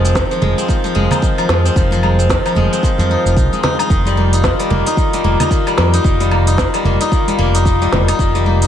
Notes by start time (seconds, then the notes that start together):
Already playing: F1 D#3 F3 G#3 F4 F5
0.05 C4, shaker
0.15 D#3, kick, snare, muted conga, shaker
0.31 F3, shaker
0.42 F1 G#3, high conga, low conga
0.58 C4, shaker
0.68 D#3, kick, shaker
0.84 F3, muted conga, shaker
0.95 F1 G#3, high conga
1.11 C4, low conga, low woodblock, shaker
1.22 D#3, kick, shaker
1.38 F3, low woodblock, shaker
1.49 F2 G#3, snare
1.65 C4, shaker
1.76 F1 D#3, kick, shaker
1.91 F3, muted conga, shaker
2.03 G#3, high conga, low woodblock
2.19 C4, shaker
2.30 D#3, kick, snare, muted conga, shaker
2.46 F3, low woodblock, shaker
2.55 F1 G#3, high conga, low conga
2.73 C4, shaker
2.83 D#3, kick, shaker
2.98 F2 F3, high conga, shaker
3.10 D#4, muted conga
3.25 F1 D#4, shaker
3.37 C2 D#4, kick, shaker
3.52 G#3, muted conga, high conga, shaker
3.63 D#4, snare, low conga
3.79 D#4, high conga, low woodblock, shaker
3.90 F1 D#3, kick, shaker
4.05 G3, muted conga, shaker
4.17 A#3, high conga
4.33 D#4, open hi-hat, shaker
4.44 D#3, kick, snare, muted conga, shaker
4.59 G3, open hi-hat, shaker
4.70 F1 A#3, high conga, low conga
4.86 D#4, open hi-hat, shaker
4.97 D#3, kick, shaker
5.13 G3, open hi-hat, muted conga, shaker
5.24 F1 A#3, high conga
5.40 D#4, open hi-hat, low conga, low woodblock, shaker
5.51 D#3, kick, shaker
5.67 G3, low woodblock, shaker
5.78 F2 A#3, snare
5.93 D#4, open hi-hat, shaker
6.04 F1 D#3, kick, shaker
6.20 G3, open hi-hat, muted conga, shaker
6.31 A#3, high conga, low woodblock
6.47 D#4, open hi-hat, shaker
6.57 D#3, kick, snare, muted conga, shaker
6.74 G3, open hi-hat, low woodblock, shaker
6.84 F1 A#3, high conga, low conga
7.01 D#4, open hi-hat, shaker
7.12 D#3, kick, shaker
7.28 G3, open hi-hat, high conga, shaker
7.38 F1 A#3, muted conga
7.55 D#4, open hi-hat, shaker
7.66 D#3, kick, shaker
7.81 G3, muted conga, high conga, shaker
7.92 F1 A#3, snare, low conga
8.08 D#4, open hi-hat, high conga, low woodblock, shaker
8.19 F1 D#3, kick, shaker
8.35 G3, muted conga, shaker
8.46 A#3, high conga
8.62 D#4, open hi-hat, shaker